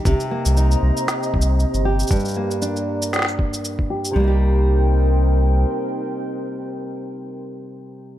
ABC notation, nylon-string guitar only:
X:1
M:4/4
L:1/8
Q:"Swing 16ths" 1/4=117
K:Cm
V:1 name="Nylon-string guitar"
C, B, E4- E G | G,, B, D4- D G | [C,G,B,EG]8- | [C,G,B,EG]8 |]